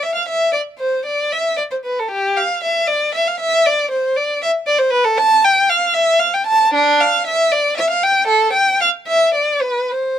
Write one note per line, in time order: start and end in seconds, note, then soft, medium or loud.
0.03 0.15 E5 medium
0.15 0.28 F5 medium
0.29 0.54 E5 medium
0.53 0.61 D5 medium
0.79 1.05 C5 medium
1.06 1.32 D5 medium
1.32 1.59 E5 medium
1.57 1.63 D5 medium
1.71 1.76 C5 medium
1.85 1.98 B4 medium
1.99 2.12 A4 medium
2.11 2.36 G4 medium
2.37 2.62 F5 medium
2.64 2.88 E5 medium
2.87 3.13 D5 medium
3.14 3.27 E5 medium
3.27 3.40 F5 medium
3.40 3.65 E5 medium
3.66 3.91 D5 medium
3.91 4.16 C5 medium
4.16 4.41 D5 medium
4.42 4.50 E5 medium
4.67 4.79 D5 medium
4.78 4.91 C5 medium
4.91 5.04 B4 medium
5.04 5.17 A4 medium
5.17 5.43 A5 medium
5.44 5.68 G5 medium
5.69 5.94 F5 medium
5.94 6.19 E5 medium
6.19 6.33 F5 medium
6.34 6.47 G5 medium
6.47 6.74 A5 medium
6.74 7.01 D4 medium
7.01 7.27 F5 medium
7.27 7.52 E5 medium
7.52 7.78 D5 medium
7.77 7.90 E5 medium
7.90 8.03 F5 medium
8.03 8.29 G5 medium
8.27 8.54 A4 medium
8.53 8.81 G5 medium
8.81 8.89 F5 medium
9.07 9.35 E5 medium
9.35 9.63 D5 medium
9.62 9.92 B4 medium
9.91 10.19 C5 medium